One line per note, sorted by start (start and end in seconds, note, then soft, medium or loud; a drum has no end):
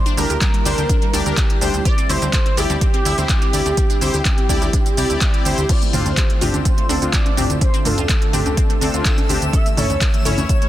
0.00 5.65 G3 medium
0.00 1.81 A#3 medium
0.00 7.57 E4 medium
0.00 0.17 C5 loud
0.06 0.14 D4 medium
0.06 closed hi-hat soft
0.06 shaker soft
0.17 0.25 D2 medium
0.17 0.26 G3 medium
0.17 0.27 D4 medium
0.17 0.27 G4 medium
0.17 0.27 A#4 loud
0.17 1.39 A#4 loud
0.17 open hi-hat loud
0.17 shaker medium
0.30 0.37 D2 medium
0.30 0.38 G4 medium
0.30 closed hi-hat soft
0.30 shaker soft
0.41 0.50 G3 medium
0.41 kick loud
0.41 clap loud
0.41 closed hi-hat medium
0.41 shaker soft
0.54 0.62 G3 medium
0.54 closed hi-hat soft
0.65 0.73 D2 medium
0.65 0.81 D4 loud
0.65 0.74 E4 medium
0.65 0.81 G4 medium
0.65 0.81 C5 loud
0.65 open hi-hat loud
0.65 shaker medium
0.78 0.85 D2 medium
0.78 0.86 G3 medium
0.78 closed hi-hat soft
0.78 shaker soft
0.89 0.98 D4 medium
0.89 kick loud
0.89 closed hi-hat medium
0.89 shaker soft
1.02 1.10 G3 medium
1.02 closed hi-hat soft
1.13 1.21 D2 loud
1.13 1.23 D4 medium
1.13 1.76 D4 loud
1.13 1.23 G4 medium
1.13 1.23 D5 medium
1.13 open hi-hat loud
1.13 shaker medium
1.26 1.33 D2 medium
1.26 1.41 D4 medium
1.26 1.41 G4 medium
1.26 1.41 A#4 loud
1.26 closed hi-hat soft
1.26 shaker soft
1.37 1.85 G4 loud
1.37 kick loud
1.37 clap loud
1.37 closed hi-hat medium
1.37 shaker soft
1.50 closed hi-hat soft
1.61 1.69 D2 loud
1.61 1.71 D4 loud
1.61 1.71 G4 medium
1.61 1.71 C5 loud
1.61 open hi-hat loud
1.61 shaker medium
1.74 1.81 D2 medium
1.74 closed hi-hat soft
1.74 shaker soft
1.85 9.49 C4 medium
1.85 1.94 G4 loud
1.85 2.11 D5 loud
1.85 kick loud
1.85 closed hi-hat medium
1.85 shaker soft
1.98 2.06 C4 medium
1.98 closed hi-hat soft
1.98 shaker soft
2.09 2.17 D2 medium
2.09 2.18 C4 medium
2.09 2.19 E4 medium
2.09 2.19 G4 medium
2.09 2.19 C5 loud
2.09 2.33 C5 loud
2.09 open hi-hat loud
2.09 shaker medium
2.22 2.29 D2 medium
2.22 2.30 C4 medium
2.22 closed hi-hat soft
2.22 shaker soft
2.33 2.42 A4 medium
2.33 2.56 C5 loud
2.33 kick loud
2.33 clap loud
2.33 closed hi-hat loud
2.33 shaker soft
2.46 2.54 C4 medium
2.46 closed hi-hat soft
2.57 2.65 D2 medium
2.57 2.73 E4 loud
2.57 2.73 G4 medium
2.57 2.66 G4 loud
2.57 5.17 G4 loud
2.57 2.73 D5 loud
2.57 open hi-hat loud
2.57 shaker medium
2.70 2.77 D2 medium
2.70 2.78 C4 medium
2.70 closed hi-hat soft
2.70 shaker soft
2.81 2.90 C4 medium
2.81 kick loud
2.81 closed hi-hat loud
2.81 shaker soft
2.94 3.02 C4 medium
2.94 closed hi-hat soft
3.05 3.13 D2 loud
3.05 3.15 E4 medium
3.05 3.14 E4 loud
3.05 3.15 G4 medium
3.05 3.15 E5 medium
3.05 open hi-hat loud
3.05 shaker medium
3.18 3.25 D2 medium
3.18 3.26 C4 medium
3.18 3.33 E4 medium
3.18 3.33 G4 medium
3.18 3.33 C5 loud
3.18 closed hi-hat soft
3.18 shaker soft
3.29 3.38 C4 medium
3.29 kick loud
3.29 clap loud
3.29 closed hi-hat loud
3.29 shaker soft
3.42 3.50 C4 medium
3.42 closed hi-hat soft
3.53 3.61 D2 loud
3.53 3.62 D4 medium
3.53 3.63 E4 loud
3.53 3.63 G4 medium
3.53 3.63 D5 loud
3.53 open hi-hat loud
3.53 shaker medium
3.66 3.73 D2 medium
3.66 3.74 C4 medium
3.66 closed hi-hat soft
3.66 shaker soft
3.77 3.86 C4 medium
3.77 kick loud
3.77 closed hi-hat loud
3.77 shaker soft
3.90 3.98 D4 medium
3.90 closed hi-hat soft
3.90 shaker soft
4.01 4.09 D2 medium
4.01 4.10 C4 medium
4.01 4.11 E4 medium
4.01 4.11 G4 medium
4.01 4.11 C5 loud
4.01 open hi-hat loud
4.01 shaker medium
4.14 4.21 D2 medium
4.14 4.22 G4 medium
4.14 closed hi-hat soft
4.14 shaker soft
4.25 4.34 C4 medium
4.25 kick loud
4.25 clap loud
4.25 closed hi-hat medium
4.25 shaker soft
4.38 4.46 C4 medium
4.38 closed hi-hat soft
4.49 4.57 D2 medium
4.49 4.58 E4 medium
4.49 4.65 E4 loud
4.49 4.65 G4 medium
4.49 4.65 D5 loud
4.49 kick medium
4.49 open hi-hat loud
4.49 shaker medium
4.62 4.69 D2 medium
4.62 4.70 C4 medium
4.62 closed hi-hat soft
4.62 shaker soft
4.73 4.82 D4 medium
4.73 kick loud
4.73 closed hi-hat loud
4.73 shaker soft
4.86 4.94 C4 medium
4.86 closed hi-hat soft
4.86 shaker soft
4.97 5.05 C2 loud
4.97 5.60 C4 loud
4.97 5.43 E4 medium
4.97 5.43 G4 medium
4.97 5.43 D5 loud
4.97 open hi-hat loud
4.97 shaker medium
5.10 5.17 D2 medium
5.10 closed hi-hat soft
5.10 shaker soft
5.21 5.66 G4 medium
5.21 kick loud
5.21 clap loud
5.21 closed hi-hat loud
5.21 shaker soft
5.34 closed hi-hat soft
5.45 5.53 D2 loud
5.45 5.61 E4 medium
5.45 5.61 G4 medium
5.45 5.61 C5 loud
5.45 open hi-hat loud
5.45 shaker medium
5.58 5.65 D2 medium
5.58 closed hi-hat soft
5.58 shaker soft
5.69 9.49 D3 medium
5.69 10.69 A3 medium
5.69 9.49 F4 medium
5.69 5.78 F4 loud
5.69 5.80 D5 loud
5.69 10.69 E5 medium
5.69 10.69 E6 medium
5.69 kick loud
5.69 closed hi-hat medium
5.69 crash medium
5.69 high conga loud
5.69 shaker soft
5.82 5.90 A3 medium
5.82 closed hi-hat soft
5.82 shaker soft
5.93 6.01 D2 medium
5.93 6.02 A3 medium
5.93 6.03 C4 medium
5.93 6.03 D4 medium
5.93 6.03 F4 loud
5.93 6.38 C5 medium
5.93 mid tom medium
5.93 open hi-hat loud
5.93 shaker medium
6.06 6.13 D2 medium
6.06 6.14 A3 medium
6.06 closed hi-hat soft
6.06 high conga medium
6.06 shaker soft
6.17 6.26 G4 medium
6.17 kick loud
6.17 clap loud
6.17 closed hi-hat loud
6.17 shaker soft
6.30 6.38 A3 medium
6.30 closed hi-hat soft
6.41 6.49 D2 medium
6.41 6.57 C4 loud
6.41 6.57 D4 medium
6.41 6.50 F4 loud
6.41 6.57 G4 loud
6.41 mid tom medium
6.41 open hi-hat loud
6.41 shaker medium
6.54 6.61 D2 medium
6.54 6.62 A3 medium
6.54 closed hi-hat soft
6.54 high conga loud
6.54 shaker soft
6.65 6.74 A3 medium
6.65 7.10 C5 loud
6.65 kick loud
6.65 closed hi-hat loud
6.65 shaker soft
6.78 6.86 A3 medium
6.78 closed hi-hat soft
6.89 6.97 D2 medium
6.89 6.99 C4 medium
6.89 6.99 D4 medium
6.89 6.98 D4 medium
6.89 6.99 A4 medium
6.89 open hi-hat loud
6.89 high conga medium
6.89 shaker medium
7.02 7.09 D2 medium
7.02 7.10 A3 medium
7.02 7.17 C4 medium
7.02 7.17 D4 medium
7.02 7.17 F4 loud
7.02 closed hi-hat soft
7.02 shaker soft
7.13 7.58 D5 loud
7.13 kick loud
7.13 clap loud
7.13 closed hi-hat loud
7.13 shaker soft
7.26 7.34 A3 medium
7.26 closed hi-hat soft
7.26 high conga loud
7.37 7.45 D2 loud
7.37 7.46 C4 medium
7.37 7.47 C4 loud
7.37 7.47 D4 medium
7.37 7.47 G4 loud
7.37 mid tom medium
7.37 open hi-hat loud
7.37 shaker medium
7.50 7.57 D2 medium
7.50 7.58 A3 medium
7.50 closed hi-hat soft
7.50 shaker soft
7.61 7.70 A3 medium
7.61 9.51 D4 medium
7.61 7.87 C5 loud
7.61 kick loud
7.61 closed hi-hat medium
7.61 high conga loud
7.61 shaker soft
7.74 7.82 C4 medium
7.74 closed hi-hat soft
7.74 shaker soft
7.85 7.93 D2 medium
7.85 7.94 A3 medium
7.85 7.95 C4 medium
7.85 7.95 D4 medium
7.85 7.95 F4 loud
7.85 9.05 A4 loud
7.85 mid tom loud
7.85 open hi-hat loud
7.85 shaker medium
7.98 8.05 D2 medium
7.98 8.06 F4 medium
7.98 closed hi-hat soft
7.98 high conga medium
7.98 shaker soft
8.09 8.18 A3 medium
8.09 kick loud
8.09 clap loud
8.09 closed hi-hat medium
8.09 shaker soft
8.22 8.30 A3 medium
8.22 closed hi-hat soft
8.33 8.41 D2 medium
8.33 8.49 C4 loud
8.33 8.42 D4 medium
8.33 8.49 D4 medium
8.33 8.49 G4 loud
8.33 mid tom medium
8.33 open hi-hat loud
8.33 shaker medium
8.46 8.53 D2 medium
8.46 8.54 A3 medium
8.46 closed hi-hat soft
8.46 high conga loud
8.46 shaker soft
8.57 8.66 C4 medium
8.57 kick loud
8.57 closed hi-hat medium
8.57 shaker soft
8.70 8.78 A3 medium
8.70 closed hi-hat soft
8.81 8.89 D2 loud
8.81 9.44 C4 loud
8.81 8.91 C4 medium
8.81 8.91 D4 medium
8.81 8.91 A4 medium
8.81 open hi-hat loud
8.81 high conga medium
8.81 shaker medium
8.94 9.01 D2 medium
8.94 9.09 C4 medium
8.94 9.09 D4 medium
8.94 9.09 F4 loud
8.94 closed hi-hat soft
8.94 shaker soft
9.05 9.55 A4 loud
9.05 kick loud
9.05 clap loud
9.05 closed hi-hat loud
9.05 shaker soft
9.18 closed hi-hat soft
9.18 high conga loud
9.29 9.37 D2 loud
9.29 9.39 C4 loud
9.29 9.39 D4 medium
9.29 9.39 G4 loud
9.29 open hi-hat loud
9.29 shaker medium
9.42 9.49 D2 medium
9.42 closed hi-hat soft
9.42 shaker soft
9.53 10.69 C#3 medium
9.53 10.69 E3 medium
9.53 9.62 A4 loud
9.53 9.77 E5 loud
9.53 kick loud
9.53 closed hi-hat medium
9.53 high conga loud
9.53 shaker soft
9.66 9.74 A3 medium
9.66 closed hi-hat soft
9.66 shaker soft
9.77 9.85 D2 loud
9.77 9.86 A3 medium
9.77 9.87 C#4 medium
9.77 9.87 E4 medium
9.77 9.87 A4 loud
9.77 10.22 C#5 loud
9.77 mid tom loud
9.77 open hi-hat loud
9.77 shaker medium
9.90 9.97 D2 medium
9.90 9.98 A3 medium
9.90 closed hi-hat soft
9.90 high conga medium
9.90 shaker soft
10.01 10.10 A#4 medium
10.01 kick loud
10.01 clap loud
10.01 closed hi-hat medium
10.01 shaker soft
10.14 10.22 A3 medium
10.14 closed hi-hat soft
10.25 10.33 D2 medium
10.25 10.41 C#4 loud
10.25 10.41 E4 medium
10.25 10.34 A4 loud
10.25 10.41 C#5 loud
10.25 mid tom medium
10.25 open hi-hat loud
10.25 shaker medium
10.38 10.45 D2 medium
10.38 10.46 A3 medium
10.38 closed hi-hat soft
10.38 high conga loud
10.38 shaker soft
10.49 10.58 A3 medium
10.49 10.69 C#5 loud
10.49 kick loud
10.49 closed hi-hat medium
10.49 shaker soft
10.62 10.69 A3 medium
10.62 closed hi-hat soft